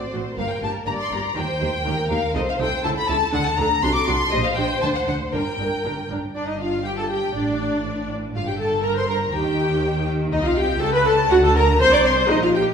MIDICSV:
0, 0, Header, 1, 6, 480
1, 0, Start_track
1, 0, Key_signature, -2, "minor"
1, 0, Tempo, 492611
1, 366, Time_signature, 2, 2, 24, 8
1, 4203, Tempo, 507185
1, 7083, Tempo, 494234
1, 12309, End_track
2, 0, Start_track
2, 0, Title_t, "Violin section"
2, 0, Program_c, 0, 48
2, 0, Note_on_c, 0, 74, 58
2, 116, Note_off_c, 0, 74, 0
2, 367, Note_on_c, 0, 77, 70
2, 478, Note_off_c, 0, 77, 0
2, 489, Note_on_c, 0, 79, 57
2, 608, Note_off_c, 0, 79, 0
2, 620, Note_on_c, 0, 81, 65
2, 698, Note_off_c, 0, 81, 0
2, 847, Note_on_c, 0, 82, 72
2, 895, Note_off_c, 0, 82, 0
2, 981, Note_on_c, 0, 84, 66
2, 1092, Note_off_c, 0, 84, 0
2, 1097, Note_on_c, 0, 82, 67
2, 1333, Note_off_c, 0, 82, 0
2, 1335, Note_on_c, 0, 79, 74
2, 2047, Note_off_c, 0, 79, 0
2, 2050, Note_on_c, 0, 77, 73
2, 2282, Note_off_c, 0, 77, 0
2, 2294, Note_on_c, 0, 75, 77
2, 2340, Note_off_c, 0, 75, 0
2, 2429, Note_on_c, 0, 77, 70
2, 2472, Note_off_c, 0, 77, 0
2, 2542, Note_on_c, 0, 79, 77
2, 2764, Note_on_c, 0, 81, 89
2, 2768, Note_off_c, 0, 79, 0
2, 2812, Note_off_c, 0, 81, 0
2, 2898, Note_on_c, 0, 83, 78
2, 3007, Note_on_c, 0, 81, 87
2, 3009, Note_off_c, 0, 83, 0
2, 3246, Note_off_c, 0, 81, 0
2, 3252, Note_on_c, 0, 78, 92
2, 3365, Note_on_c, 0, 81, 85
2, 3366, Note_off_c, 0, 78, 0
2, 3485, Note_off_c, 0, 81, 0
2, 3491, Note_on_c, 0, 82, 92
2, 3727, Note_off_c, 0, 82, 0
2, 3738, Note_on_c, 0, 84, 101
2, 3850, Note_on_c, 0, 86, 83
2, 3851, Note_off_c, 0, 84, 0
2, 3965, Note_off_c, 0, 86, 0
2, 3968, Note_on_c, 0, 84, 94
2, 4204, Note_on_c, 0, 75, 101
2, 4206, Note_off_c, 0, 84, 0
2, 4322, Note_off_c, 0, 75, 0
2, 4328, Note_on_c, 0, 77, 78
2, 4435, Note_on_c, 0, 79, 81
2, 4443, Note_off_c, 0, 77, 0
2, 4675, Note_off_c, 0, 79, 0
2, 4678, Note_on_c, 0, 81, 84
2, 4725, Note_off_c, 0, 81, 0
2, 4812, Note_on_c, 0, 78, 66
2, 4857, Note_off_c, 0, 78, 0
2, 4926, Note_on_c, 0, 78, 71
2, 5002, Note_off_c, 0, 78, 0
2, 5172, Note_on_c, 0, 79, 68
2, 5881, Note_off_c, 0, 79, 0
2, 6145, Note_on_c, 0, 74, 51
2, 6242, Note_on_c, 0, 75, 47
2, 6249, Note_off_c, 0, 74, 0
2, 6366, Note_off_c, 0, 75, 0
2, 6377, Note_on_c, 0, 77, 52
2, 6606, Note_on_c, 0, 79, 58
2, 6613, Note_off_c, 0, 77, 0
2, 6654, Note_off_c, 0, 79, 0
2, 6720, Note_on_c, 0, 81, 54
2, 6840, Note_off_c, 0, 81, 0
2, 6844, Note_on_c, 0, 79, 52
2, 7077, Note_off_c, 0, 79, 0
2, 7084, Note_on_c, 0, 74, 53
2, 7810, Note_off_c, 0, 74, 0
2, 8048, Note_on_c, 0, 77, 60
2, 8160, Note_off_c, 0, 77, 0
2, 8177, Note_on_c, 0, 79, 40
2, 8293, Note_off_c, 0, 79, 0
2, 8294, Note_on_c, 0, 81, 56
2, 8526, Note_off_c, 0, 81, 0
2, 8532, Note_on_c, 0, 82, 61
2, 8647, Note_off_c, 0, 82, 0
2, 8658, Note_on_c, 0, 84, 58
2, 8704, Note_off_c, 0, 84, 0
2, 8785, Note_on_c, 0, 82, 62
2, 9011, Note_off_c, 0, 82, 0
2, 9019, Note_on_c, 0, 79, 62
2, 9732, Note_off_c, 0, 79, 0
2, 9971, Note_on_c, 0, 75, 72
2, 10018, Note_off_c, 0, 75, 0
2, 10091, Note_on_c, 0, 77, 61
2, 10206, Note_off_c, 0, 77, 0
2, 10208, Note_on_c, 0, 79, 69
2, 10440, Note_on_c, 0, 81, 79
2, 10441, Note_off_c, 0, 79, 0
2, 10557, Note_on_c, 0, 83, 73
2, 10562, Note_off_c, 0, 81, 0
2, 10670, Note_on_c, 0, 81, 77
2, 10680, Note_off_c, 0, 83, 0
2, 10748, Note_off_c, 0, 81, 0
2, 10912, Note_on_c, 0, 78, 85
2, 10962, Note_off_c, 0, 78, 0
2, 11038, Note_on_c, 0, 81, 72
2, 11157, Note_off_c, 0, 81, 0
2, 11167, Note_on_c, 0, 82, 76
2, 11404, Note_off_c, 0, 82, 0
2, 11406, Note_on_c, 0, 84, 88
2, 11452, Note_off_c, 0, 84, 0
2, 11528, Note_on_c, 0, 86, 71
2, 11574, Note_off_c, 0, 86, 0
2, 11648, Note_on_c, 0, 84, 75
2, 11726, Note_off_c, 0, 84, 0
2, 11877, Note_on_c, 0, 75, 84
2, 11995, Note_off_c, 0, 75, 0
2, 12004, Note_on_c, 0, 77, 55
2, 12051, Note_off_c, 0, 77, 0
2, 12123, Note_on_c, 0, 79, 66
2, 12201, Note_off_c, 0, 79, 0
2, 12309, End_track
3, 0, Start_track
3, 0, Title_t, "Violin section"
3, 0, Program_c, 1, 48
3, 0, Note_on_c, 1, 72, 51
3, 356, Note_off_c, 1, 72, 0
3, 374, Note_on_c, 1, 70, 50
3, 850, Note_on_c, 1, 74, 56
3, 851, Note_off_c, 1, 70, 0
3, 1320, Note_off_c, 1, 74, 0
3, 1328, Note_on_c, 1, 72, 56
3, 1796, Note_off_c, 1, 72, 0
3, 1801, Note_on_c, 1, 70, 58
3, 2272, Note_off_c, 1, 70, 0
3, 2274, Note_on_c, 1, 72, 63
3, 2759, Note_off_c, 1, 72, 0
3, 2761, Note_on_c, 1, 69, 71
3, 3707, Note_off_c, 1, 69, 0
3, 3719, Note_on_c, 1, 69, 70
3, 4192, Note_off_c, 1, 69, 0
3, 4203, Note_on_c, 1, 72, 83
3, 5161, Note_off_c, 1, 72, 0
3, 5164, Note_on_c, 1, 70, 56
3, 5892, Note_off_c, 1, 70, 0
3, 6132, Note_on_c, 1, 74, 51
3, 6243, Note_off_c, 1, 74, 0
3, 6257, Note_on_c, 1, 75, 46
3, 6371, Note_off_c, 1, 75, 0
3, 6372, Note_on_c, 1, 77, 52
3, 6605, Note_off_c, 1, 77, 0
3, 6607, Note_on_c, 1, 79, 57
3, 6727, Note_off_c, 1, 79, 0
3, 6733, Note_on_c, 1, 81, 54
3, 6850, Note_off_c, 1, 81, 0
3, 6856, Note_on_c, 1, 79, 55
3, 7083, Note_off_c, 1, 79, 0
3, 7087, Note_on_c, 1, 74, 48
3, 7797, Note_off_c, 1, 74, 0
3, 8052, Note_on_c, 1, 77, 60
3, 8163, Note_off_c, 1, 77, 0
3, 8166, Note_on_c, 1, 79, 46
3, 8285, Note_off_c, 1, 79, 0
3, 8289, Note_on_c, 1, 81, 57
3, 8367, Note_off_c, 1, 81, 0
3, 8524, Note_on_c, 1, 82, 59
3, 8573, Note_off_c, 1, 82, 0
3, 8657, Note_on_c, 1, 84, 61
3, 8768, Note_on_c, 1, 82, 64
3, 8769, Note_off_c, 1, 84, 0
3, 8846, Note_off_c, 1, 82, 0
3, 9004, Note_on_c, 1, 79, 62
3, 9711, Note_off_c, 1, 79, 0
3, 9959, Note_on_c, 1, 75, 75
3, 10074, Note_off_c, 1, 75, 0
3, 10078, Note_on_c, 1, 77, 68
3, 10201, Note_off_c, 1, 77, 0
3, 10206, Note_on_c, 1, 79, 68
3, 10444, Note_off_c, 1, 79, 0
3, 10448, Note_on_c, 1, 81, 74
3, 10495, Note_off_c, 1, 81, 0
3, 10569, Note_on_c, 1, 83, 76
3, 10683, Note_off_c, 1, 83, 0
3, 10686, Note_on_c, 1, 81, 81
3, 10914, Note_on_c, 1, 78, 85
3, 10919, Note_off_c, 1, 81, 0
3, 11038, Note_off_c, 1, 78, 0
3, 11043, Note_on_c, 1, 81, 74
3, 11160, Note_off_c, 1, 81, 0
3, 11170, Note_on_c, 1, 82, 80
3, 11400, Note_off_c, 1, 82, 0
3, 11408, Note_on_c, 1, 84, 80
3, 11521, Note_off_c, 1, 84, 0
3, 11531, Note_on_c, 1, 86, 80
3, 11576, Note_off_c, 1, 86, 0
3, 11649, Note_on_c, 1, 84, 82
3, 11727, Note_off_c, 1, 84, 0
3, 11884, Note_on_c, 1, 75, 82
3, 11931, Note_off_c, 1, 75, 0
3, 12016, Note_on_c, 1, 77, 56
3, 12126, Note_off_c, 1, 77, 0
3, 12132, Note_on_c, 1, 79, 70
3, 12210, Note_off_c, 1, 79, 0
3, 12309, End_track
4, 0, Start_track
4, 0, Title_t, "Viola section"
4, 0, Program_c, 2, 48
4, 134, Note_on_c, 2, 60, 42
4, 135, Note_on_c, 2, 66, 41
4, 212, Note_off_c, 2, 60, 0
4, 213, Note_off_c, 2, 66, 0
4, 371, Note_on_c, 2, 58, 48
4, 374, Note_on_c, 2, 67, 44
4, 449, Note_off_c, 2, 58, 0
4, 452, Note_off_c, 2, 67, 0
4, 615, Note_on_c, 2, 58, 46
4, 615, Note_on_c, 2, 67, 46
4, 693, Note_off_c, 2, 58, 0
4, 693, Note_off_c, 2, 67, 0
4, 854, Note_on_c, 2, 58, 47
4, 855, Note_on_c, 2, 67, 45
4, 932, Note_off_c, 2, 58, 0
4, 933, Note_off_c, 2, 67, 0
4, 1099, Note_on_c, 2, 67, 44
4, 1100, Note_on_c, 2, 58, 42
4, 1177, Note_off_c, 2, 67, 0
4, 1178, Note_off_c, 2, 58, 0
4, 1333, Note_on_c, 2, 67, 54
4, 1335, Note_on_c, 2, 58, 50
4, 1411, Note_off_c, 2, 67, 0
4, 1413, Note_off_c, 2, 58, 0
4, 1578, Note_on_c, 2, 58, 46
4, 1578, Note_on_c, 2, 67, 49
4, 1656, Note_off_c, 2, 58, 0
4, 1656, Note_off_c, 2, 67, 0
4, 1812, Note_on_c, 2, 67, 51
4, 1813, Note_on_c, 2, 58, 53
4, 1890, Note_off_c, 2, 67, 0
4, 1891, Note_off_c, 2, 58, 0
4, 2049, Note_on_c, 2, 58, 49
4, 2050, Note_on_c, 2, 67, 46
4, 2127, Note_off_c, 2, 58, 0
4, 2128, Note_off_c, 2, 67, 0
4, 2285, Note_on_c, 2, 63, 57
4, 2288, Note_on_c, 2, 69, 58
4, 2363, Note_off_c, 2, 63, 0
4, 2366, Note_off_c, 2, 69, 0
4, 2529, Note_on_c, 2, 63, 52
4, 2531, Note_on_c, 2, 69, 57
4, 2607, Note_off_c, 2, 63, 0
4, 2609, Note_off_c, 2, 69, 0
4, 2769, Note_on_c, 2, 69, 63
4, 2770, Note_on_c, 2, 64, 62
4, 2847, Note_off_c, 2, 69, 0
4, 2848, Note_off_c, 2, 64, 0
4, 3012, Note_on_c, 2, 64, 57
4, 3012, Note_on_c, 2, 69, 54
4, 3090, Note_off_c, 2, 64, 0
4, 3090, Note_off_c, 2, 69, 0
4, 3246, Note_on_c, 2, 62, 63
4, 3251, Note_on_c, 2, 69, 64
4, 3324, Note_off_c, 2, 62, 0
4, 3329, Note_off_c, 2, 69, 0
4, 3491, Note_on_c, 2, 69, 57
4, 3494, Note_on_c, 2, 62, 60
4, 3569, Note_off_c, 2, 69, 0
4, 3572, Note_off_c, 2, 62, 0
4, 3733, Note_on_c, 2, 66, 64
4, 3734, Note_on_c, 2, 62, 65
4, 3811, Note_off_c, 2, 66, 0
4, 3812, Note_off_c, 2, 62, 0
4, 3965, Note_on_c, 2, 62, 57
4, 3965, Note_on_c, 2, 66, 61
4, 4043, Note_off_c, 2, 62, 0
4, 4043, Note_off_c, 2, 66, 0
4, 4201, Note_on_c, 2, 62, 62
4, 4202, Note_on_c, 2, 67, 65
4, 4277, Note_off_c, 2, 62, 0
4, 4278, Note_off_c, 2, 67, 0
4, 4443, Note_on_c, 2, 62, 57
4, 4445, Note_on_c, 2, 67, 57
4, 4519, Note_off_c, 2, 62, 0
4, 4520, Note_off_c, 2, 67, 0
4, 4689, Note_on_c, 2, 62, 56
4, 4690, Note_on_c, 2, 72, 56
4, 4765, Note_off_c, 2, 62, 0
4, 4765, Note_off_c, 2, 72, 0
4, 4927, Note_on_c, 2, 62, 49
4, 4928, Note_on_c, 2, 72, 48
4, 5003, Note_off_c, 2, 62, 0
4, 5004, Note_off_c, 2, 72, 0
4, 5169, Note_on_c, 2, 62, 53
4, 5172, Note_on_c, 2, 70, 52
4, 5244, Note_off_c, 2, 62, 0
4, 5248, Note_off_c, 2, 70, 0
4, 5420, Note_on_c, 2, 62, 46
4, 5420, Note_on_c, 2, 70, 46
4, 5495, Note_off_c, 2, 62, 0
4, 5496, Note_off_c, 2, 70, 0
4, 5658, Note_on_c, 2, 70, 48
4, 5661, Note_on_c, 2, 62, 46
4, 5734, Note_off_c, 2, 70, 0
4, 5737, Note_off_c, 2, 62, 0
4, 5897, Note_on_c, 2, 62, 41
4, 5899, Note_on_c, 2, 70, 40
4, 5972, Note_off_c, 2, 62, 0
4, 5975, Note_off_c, 2, 70, 0
4, 6131, Note_on_c, 2, 62, 62
4, 6242, Note_off_c, 2, 62, 0
4, 6253, Note_on_c, 2, 63, 56
4, 6370, Note_on_c, 2, 65, 63
4, 6371, Note_off_c, 2, 63, 0
4, 6605, Note_off_c, 2, 65, 0
4, 6609, Note_on_c, 2, 67, 66
4, 6726, Note_off_c, 2, 67, 0
4, 6732, Note_on_c, 2, 69, 59
4, 6779, Note_off_c, 2, 69, 0
4, 6850, Note_on_c, 2, 67, 58
4, 7081, Note_off_c, 2, 67, 0
4, 7091, Note_on_c, 2, 62, 62
4, 7799, Note_off_c, 2, 62, 0
4, 8053, Note_on_c, 2, 65, 73
4, 8101, Note_off_c, 2, 65, 0
4, 8169, Note_on_c, 2, 67, 54
4, 8286, Note_off_c, 2, 67, 0
4, 8290, Note_on_c, 2, 69, 66
4, 8522, Note_on_c, 2, 70, 73
4, 8523, Note_off_c, 2, 69, 0
4, 8643, Note_on_c, 2, 72, 73
4, 8644, Note_off_c, 2, 70, 0
4, 8754, Note_on_c, 2, 70, 73
4, 8765, Note_off_c, 2, 72, 0
4, 8832, Note_off_c, 2, 70, 0
4, 8997, Note_on_c, 2, 67, 69
4, 9707, Note_off_c, 2, 67, 0
4, 9965, Note_on_c, 2, 63, 86
4, 10077, Note_off_c, 2, 63, 0
4, 10088, Note_on_c, 2, 65, 76
4, 10206, Note_off_c, 2, 65, 0
4, 10210, Note_on_c, 2, 67, 88
4, 10440, Note_on_c, 2, 69, 100
4, 10447, Note_off_c, 2, 67, 0
4, 10562, Note_off_c, 2, 69, 0
4, 10563, Note_on_c, 2, 71, 86
4, 10680, Note_off_c, 2, 71, 0
4, 10682, Note_on_c, 2, 69, 86
4, 10760, Note_off_c, 2, 69, 0
4, 10924, Note_on_c, 2, 66, 100
4, 10972, Note_off_c, 2, 66, 0
4, 11052, Note_on_c, 2, 69, 80
4, 11165, Note_off_c, 2, 69, 0
4, 11167, Note_on_c, 2, 70, 90
4, 11245, Note_off_c, 2, 70, 0
4, 11405, Note_on_c, 2, 72, 107
4, 11520, Note_off_c, 2, 72, 0
4, 11530, Note_on_c, 2, 74, 89
4, 11644, Note_off_c, 2, 74, 0
4, 11648, Note_on_c, 2, 72, 93
4, 11883, Note_off_c, 2, 72, 0
4, 11884, Note_on_c, 2, 63, 103
4, 12002, Note_off_c, 2, 63, 0
4, 12007, Note_on_c, 2, 65, 80
4, 12124, Note_off_c, 2, 65, 0
4, 12127, Note_on_c, 2, 67, 83
4, 12309, Note_off_c, 2, 67, 0
4, 12309, End_track
5, 0, Start_track
5, 0, Title_t, "Cello section"
5, 0, Program_c, 3, 48
5, 122, Note_on_c, 3, 45, 45
5, 200, Note_off_c, 3, 45, 0
5, 365, Note_on_c, 3, 43, 50
5, 443, Note_off_c, 3, 43, 0
5, 604, Note_on_c, 3, 43, 47
5, 682, Note_off_c, 3, 43, 0
5, 843, Note_on_c, 3, 43, 50
5, 921, Note_off_c, 3, 43, 0
5, 1084, Note_on_c, 3, 43, 49
5, 1162, Note_off_c, 3, 43, 0
5, 1324, Note_on_c, 3, 51, 61
5, 1402, Note_off_c, 3, 51, 0
5, 1565, Note_on_c, 3, 51, 54
5, 1643, Note_off_c, 3, 51, 0
5, 1806, Note_on_c, 3, 51, 58
5, 1884, Note_off_c, 3, 51, 0
5, 2042, Note_on_c, 3, 51, 58
5, 2120, Note_off_c, 3, 51, 0
5, 2281, Note_on_c, 3, 48, 66
5, 2359, Note_off_c, 3, 48, 0
5, 2524, Note_on_c, 3, 48, 60
5, 2602, Note_off_c, 3, 48, 0
5, 2769, Note_on_c, 3, 49, 63
5, 2847, Note_off_c, 3, 49, 0
5, 3005, Note_on_c, 3, 49, 65
5, 3083, Note_off_c, 3, 49, 0
5, 3247, Note_on_c, 3, 50, 78
5, 3325, Note_off_c, 3, 50, 0
5, 3494, Note_on_c, 3, 50, 68
5, 3572, Note_off_c, 3, 50, 0
5, 3728, Note_on_c, 3, 48, 65
5, 3806, Note_off_c, 3, 48, 0
5, 3968, Note_on_c, 3, 48, 63
5, 4046, Note_off_c, 3, 48, 0
5, 4209, Note_on_c, 3, 46, 75
5, 4284, Note_off_c, 3, 46, 0
5, 4439, Note_on_c, 3, 46, 63
5, 4515, Note_off_c, 3, 46, 0
5, 4683, Note_on_c, 3, 50, 59
5, 4759, Note_off_c, 3, 50, 0
5, 4921, Note_on_c, 3, 50, 56
5, 4997, Note_off_c, 3, 50, 0
5, 5158, Note_on_c, 3, 43, 59
5, 5234, Note_off_c, 3, 43, 0
5, 5402, Note_on_c, 3, 43, 52
5, 5478, Note_off_c, 3, 43, 0
5, 5644, Note_on_c, 3, 43, 49
5, 5719, Note_off_c, 3, 43, 0
5, 5888, Note_on_c, 3, 43, 46
5, 5964, Note_off_c, 3, 43, 0
5, 6132, Note_on_c, 3, 43, 51
5, 7047, Note_off_c, 3, 43, 0
5, 7091, Note_on_c, 3, 45, 51
5, 8035, Note_off_c, 3, 45, 0
5, 8051, Note_on_c, 3, 43, 54
5, 9004, Note_on_c, 3, 51, 58
5, 9007, Note_off_c, 3, 43, 0
5, 9945, Note_off_c, 3, 51, 0
5, 9967, Note_on_c, 3, 48, 66
5, 10444, Note_off_c, 3, 48, 0
5, 10448, Note_on_c, 3, 49, 68
5, 10915, Note_off_c, 3, 49, 0
5, 10926, Note_on_c, 3, 50, 71
5, 11399, Note_on_c, 3, 48, 71
5, 11403, Note_off_c, 3, 50, 0
5, 11877, Note_off_c, 3, 48, 0
5, 11882, Note_on_c, 3, 46, 74
5, 12309, Note_off_c, 3, 46, 0
5, 12309, End_track
6, 0, Start_track
6, 0, Title_t, "Double bass section"
6, 0, Program_c, 4, 48
6, 129, Note_on_c, 4, 33, 48
6, 207, Note_off_c, 4, 33, 0
6, 367, Note_on_c, 4, 31, 52
6, 445, Note_off_c, 4, 31, 0
6, 611, Note_on_c, 4, 31, 49
6, 689, Note_off_c, 4, 31, 0
6, 845, Note_on_c, 4, 31, 50
6, 923, Note_off_c, 4, 31, 0
6, 1086, Note_on_c, 4, 31, 48
6, 1164, Note_off_c, 4, 31, 0
6, 1324, Note_on_c, 4, 39, 56
6, 1402, Note_off_c, 4, 39, 0
6, 1565, Note_on_c, 4, 39, 54
6, 1643, Note_off_c, 4, 39, 0
6, 1800, Note_on_c, 4, 39, 54
6, 1878, Note_off_c, 4, 39, 0
6, 2044, Note_on_c, 4, 39, 55
6, 2122, Note_off_c, 4, 39, 0
6, 2289, Note_on_c, 4, 36, 65
6, 2367, Note_off_c, 4, 36, 0
6, 2528, Note_on_c, 4, 36, 61
6, 2606, Note_off_c, 4, 36, 0
6, 2764, Note_on_c, 4, 37, 62
6, 2842, Note_off_c, 4, 37, 0
6, 3008, Note_on_c, 4, 37, 64
6, 3086, Note_off_c, 4, 37, 0
6, 3249, Note_on_c, 4, 38, 66
6, 3327, Note_off_c, 4, 38, 0
6, 3491, Note_on_c, 4, 38, 66
6, 3569, Note_off_c, 4, 38, 0
6, 3729, Note_on_c, 4, 36, 68
6, 3806, Note_off_c, 4, 36, 0
6, 3968, Note_on_c, 4, 36, 66
6, 4046, Note_off_c, 4, 36, 0
6, 4209, Note_on_c, 4, 34, 73
6, 4285, Note_off_c, 4, 34, 0
6, 4443, Note_on_c, 4, 34, 63
6, 4518, Note_off_c, 4, 34, 0
6, 4683, Note_on_c, 4, 38, 62
6, 4759, Note_off_c, 4, 38, 0
6, 4922, Note_on_c, 4, 38, 59
6, 4998, Note_off_c, 4, 38, 0
6, 5168, Note_on_c, 4, 31, 58
6, 5243, Note_off_c, 4, 31, 0
6, 5419, Note_on_c, 4, 31, 50
6, 5495, Note_off_c, 4, 31, 0
6, 5655, Note_on_c, 4, 31, 50
6, 5731, Note_off_c, 4, 31, 0
6, 5887, Note_on_c, 4, 31, 46
6, 5963, Note_off_c, 4, 31, 0
6, 6135, Note_on_c, 4, 31, 49
6, 7048, Note_off_c, 4, 31, 0
6, 7087, Note_on_c, 4, 33, 49
6, 8033, Note_off_c, 4, 33, 0
6, 8051, Note_on_c, 4, 31, 52
6, 9002, Note_on_c, 4, 39, 54
6, 9007, Note_off_c, 4, 31, 0
6, 9945, Note_off_c, 4, 39, 0
6, 9964, Note_on_c, 4, 36, 62
6, 10442, Note_on_c, 4, 37, 67
6, 10443, Note_off_c, 4, 36, 0
6, 10912, Note_off_c, 4, 37, 0
6, 10925, Note_on_c, 4, 38, 70
6, 11401, Note_on_c, 4, 36, 69
6, 11403, Note_off_c, 4, 38, 0
6, 11878, Note_off_c, 4, 36, 0
6, 11878, Note_on_c, 4, 34, 68
6, 12309, Note_off_c, 4, 34, 0
6, 12309, End_track
0, 0, End_of_file